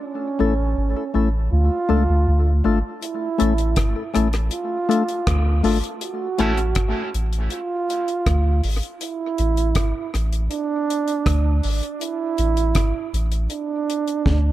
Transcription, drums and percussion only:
3.03 closed hi-hat
3.40 closed hi-hat
3.58 closed hi-hat
3.76 kick, cross-stick, closed hi-hat
4.15 cross-stick, closed hi-hat
4.33 cross-stick, closed hi-hat
4.51 closed hi-hat
4.91 closed hi-hat
5.09 closed hi-hat
5.27 kick, cross-stick, closed hi-hat
5.64 open hi-hat
5.84 closed hi-hat
6.01 closed hi-hat
6.39 closed hi-hat
6.57 closed hi-hat
6.75 kick, cross-stick, closed hi-hat
7.14 closed hi-hat
7.33 closed hi-hat
7.50 closed hi-hat
7.90 closed hi-hat
8.08 closed hi-hat
8.26 kick, cross-stick, closed hi-hat
8.64 open hi-hat
8.83 closed hi-hat
9.01 closed hi-hat
9.38 closed hi-hat
9.57 closed hi-hat
9.75 kick, cross-stick, closed hi-hat
10.14 cross-stick, closed hi-hat
10.33 closed hi-hat
10.51 closed hi-hat
10.90 closed hi-hat
11.08 closed hi-hat
11.26 kick, cross-stick, closed hi-hat
11.63 open hi-hat
11.83 closed hi-hat
12.01 closed hi-hat
12.38 closed hi-hat
12.57 closed hi-hat
12.75 kick, cross-stick, closed hi-hat
13.14 closed hi-hat
13.32 closed hi-hat
13.50 closed hi-hat
13.90 closed hi-hat
14.08 closed hi-hat
14.26 kick, snare

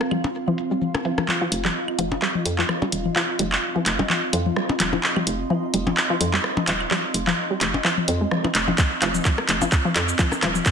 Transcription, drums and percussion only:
0.01 cross-stick
0.11 closed hi-hat, high tom, claves
0.24 percussion blips, cabasa
0.35 cabasa
0.48 high tom
0.58 closed hi-hat, cabasa
0.71 cabasa
0.82 high tom, cabasa
0.95 cross-stick, percussion blips, cabasa, claves
1.05 closed hi-hat
1.18 cross-stick, high tom, percussion blips, cabasa
1.28 clap, high tom
1.52 closed hi-hat
1.65 clap, high tom
1.88 claves
1.99 closed hi-hat, high tom
2.12 percussion blips
2.22 clap
2.35 high tom
2.46 closed hi-hat
2.58 clap
2.69 cross-stick, high tom, claves
2.82 percussion blips
2.92 closed hi-hat
3.05 high tom
3.16 clap
3.39 closed hi-hat, high tom
3.52 clap, claves
3.76 high tom
3.86 clap, closed hi-hat
3.99 percussion blips
4.10 clap, high tom
4.33 closed hi-hat, claves
4.46 high tom
4.56 cross-stick
4.69 percussion blips
4.80 clap, closed hi-hat, high tom
4.93 percussion blips
5.03 clap
5.16 high tom, claves
5.27 closed hi-hat
5.50 high tom
5.74 closed hi-hat
5.87 high tom, percussion blips
5.97 clap, claves
6.21 closed hi-hat, high tom
6.34 clap
6.44 cross-stick
6.57 high tom, percussion blips
6.67 clap, closed hi-hat
6.80 claves
6.91 clap, high tom
7.14 closed hi-hat
7.27 clap, high tom
7.61 clap, closed hi-hat, high tom, claves
7.74 percussion blips
7.85 clap
7.98 high tom
8.08 closed hi-hat
8.31 cross-stick, high tom
8.44 percussion blips, claves
8.55 clap, closed hi-hat
8.68 high tom, percussion blips
8.78 kick, clap, high tom, cabasa
9.02 clap, closed hi-hat
9.15 high tom, cabasa
9.25 kick, clap, cabasa
9.38 cross-stick, claves
9.49 clap, closed hi-hat, high tom
9.62 percussion blips, cabasa
9.72 kick, clap, cabasa
9.85 high tom
9.96 clap, closed hi-hat, cabasa
10.09 cabasa
10.19 kick, clap, high tom, cabasa, claves
10.32 cross-stick, percussion blips, cabasa
10.42 cross-stick, clap, closed hi-hat
10.55 high tom, cabasa
10.66 kick, clap, cabasa

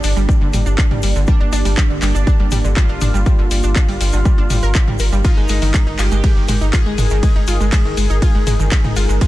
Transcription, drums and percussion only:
0.04 open hi-hat, shaker
0.16 shaker
0.29 kick, shaker
0.53 mid tom, open hi-hat, shaker
0.66 shaker
0.78 kick, clap, shaker
0.91 mid tom
1.03 open hi-hat, shaker
1.16 shaker
1.27 kick, shaker
1.53 open hi-hat, shaker
1.65 open hi-hat, shaker
1.77 kick, clap, shaker
2.02 clap, open hi-hat, shaker
2.15 shaker
2.27 kick, shaker
2.51 mid tom, open hi-hat, shaker
2.65 shaker
2.76 kick, clap, shaker
3.01 mid tom, open hi-hat, shaker
3.15 shaker
3.26 kick, shaker
3.51 open hi-hat, shaker
3.63 shaker
3.76 kick, clap, shaker
3.88 open hi-hat
4.01 open hi-hat, shaker
4.13 shaker
4.25 kick, shaker
4.50 mid tom, open hi-hat, shaker
4.63 shaker
4.75 kick, clap, shaker
4.88 mid tom
4.99 open hi-hat, shaker
5.12 shaker
5.24 kick, ride, shaker
5.49 open hi-hat, shaker
5.62 open hi-hat, shaker
5.74 kick, clap, ride, shaker
5.99 clap, open hi-hat, shaker
6.11 shaker
6.24 kick, ride, shaker
6.48 mid tom, open hi-hat, shaker
6.61 shaker
6.73 kick, clap, ride, shaker
6.98 mid tom, open hi-hat, shaker
7.10 shaker
7.23 kick, ride, shaker
7.47 open hi-hat, shaker
7.61 shaker
7.72 kick, clap, ride, shaker
7.97 open hi-hat, shaker
8.10 shaker
8.22 kick, ride, shaker
8.47 mid tom, open hi-hat, shaker
8.60 shaker
8.71 kick, clap, ride, shaker
8.84 mid tom
8.96 open hi-hat, shaker
9.10 shaker
9.21 kick, ride, shaker

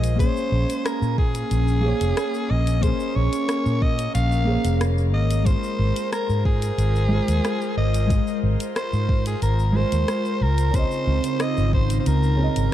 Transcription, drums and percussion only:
0.04 closed hi-hat, shaker
0.19 kick, closed hi-hat, shaker
0.37 shaker
0.70 closed hi-hat, shaker
0.86 cross-stick, closed hi-hat, shaker
1.02 shaker
1.18 kick
1.35 closed hi-hat, shaker
1.51 closed hi-hat, shaker
1.68 shaker
2.01 closed hi-hat, shaker
2.17 cross-stick, closed hi-hat, shaker
2.34 shaker
2.67 closed hi-hat, shaker
2.83 kick, closed hi-hat, shaker
3.00 shaker
3.33 closed hi-hat, shaker
3.49 cross-stick, closed hi-hat, shaker
3.66 shaker
3.82 kick
3.99 closed hi-hat, shaker
4.15 closed hi-hat, shaker
4.32 shaker
4.65 closed hi-hat, shaker
4.81 cross-stick, closed hi-hat, shaker
4.98 shaker
5.31 closed hi-hat, shaker
5.46 kick, closed hi-hat, shaker
5.63 shaker
5.96 closed hi-hat, shaker
6.13 cross-stick, closed hi-hat, shaker
6.29 shaker
6.45 kick
6.62 closed hi-hat, shaker
6.79 closed hi-hat, shaker
6.96 shaker
7.28 closed hi-hat, shaker
7.45 cross-stick, closed hi-hat, shaker
7.61 shaker
7.94 closed hi-hat, shaker
8.10 kick, closed hi-hat, shaker
8.27 shaker
8.60 closed hi-hat, shaker
8.76 cross-stick, closed hi-hat, shaker
8.93 shaker
9.09 kick
9.26 closed hi-hat, shaker
9.42 closed hi-hat, shaker
9.59 shaker
9.92 closed hi-hat, shaker
10.08 cross-stick, closed hi-hat, shaker
10.25 shaker
10.58 closed hi-hat, shaker
10.74 kick, closed hi-hat, shaker
10.91 shaker
11.24 closed hi-hat, shaker
11.40 cross-stick, closed hi-hat, shaker
11.57 shaker
11.73 kick
11.90 closed hi-hat, shaker
12.06 closed hi-hat, shaker
12.23 shaker
12.56 closed hi-hat, shaker

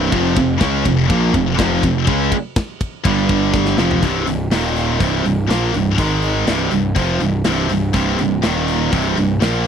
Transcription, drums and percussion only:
0.12 kick, ride
0.36 kick, ride
0.60 kick, snare, ride
0.85 kick, ride
1.10 kick, ride
1.34 kick, ride
1.59 kick, snare, ride
1.83 kick, ride
2.07 kick, ride
2.32 kick, ride
2.56 kick, snare, ride
2.81 kick, ride
3.05 kick, ride
3.29 kick, ride
3.54 kick, snare
3.65 snare
3.78 snare
3.91 floor tom
4.03 kick, open hi-hat
4.27 open hi-hat
4.51 snare, open hi-hat
4.76 open hi-hat
5.00 kick, open hi-hat
5.25 open hi-hat
5.50 snare, open hi-hat
5.74 open hi-hat
5.98 kick, open hi-hat
6.22 open hi-hat
6.47 snare, open hi-hat
6.71 open hi-hat
6.96 kick, open hi-hat
7.20 open hi-hat
7.44 snare, open hi-hat
7.70 open hi-hat
7.93 kick, open hi-hat
8.19 open hi-hat
8.43 snare, open hi-hat
8.68 open hi-hat
8.93 kick, open hi-hat
9.17 open hi-hat
9.42 snare, open hi-hat

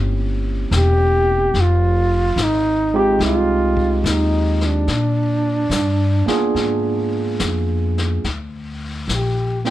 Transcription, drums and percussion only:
0.72 snare, hi-hat pedal
1.54 brush sweep, snare
2.37 snare, hi-hat pedal
3.20 brush sweep, snare
3.77 kick
4.05 snare, hi-hat pedal
4.61 snare
4.88 brush sweep, snare
5.71 snare, hi-hat pedal
6.28 snare
6.56 brush sweep, snare
7.40 snare, hi-hat pedal
7.98 snare
8.24 brush sweep, snare
9.09 snare, hi-hat pedal
9.65 snare

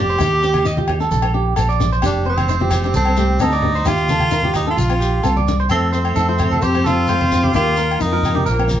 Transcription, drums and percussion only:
0.09 shekere
0.19 low conga, low agogo, shekere
0.43 shekere
0.54 high conga, low agogo, shekere
0.66 shekere
0.77 high conga
0.88 low conga, low agogo
1.01 shekere
1.11 high conga, shekere
1.22 low agogo
1.56 low agogo, shekere
1.70 shekere
1.80 low conga, shekere
1.92 shekere
2.02 low conga, low agogo, shekere
2.38 high conga, low agogo, shekere
2.49 shekere
2.60 high conga
2.71 low conga, low agogo, shekere
2.83 shekere
2.94 high conga, shekere
3.05 low agogo
3.17 shekere
3.39 low agogo, shekere
3.52 shekere
3.62 low conga
3.75 shekere
3.85 low conga, low agogo, shekere
3.97 shekere
4.08 high conga, shekere
4.20 high conga, low agogo
4.31 shekere
4.43 high conga
4.54 low conga, low agogo, shekere
4.78 high conga, shekere
4.90 low agogo, shekere
5.01 shekere
5.23 low agogo, shekere
5.37 high conga, shekere
5.48 low conga, shekere
5.59 shekere
5.69 low agogo, shekere
5.93 shekere
6.05 low agogo
6.16 shekere
6.38 high conga, low conga, low agogo, shekere
6.53 high conga
6.62 shekere
6.75 low agogo
6.86 high conga, shekere
7.07 low agogo, shekere
7.21 high conga
7.32 low conga, shekere
7.44 high conga
7.54 low agogo, shekere
7.76 shekere
7.91 low agogo
8.00 shekere
8.23 high conga, low conga, low agogo, shekere
8.37 high conga
8.46 shekere
8.59 low agogo
8.69 high conga, shekere

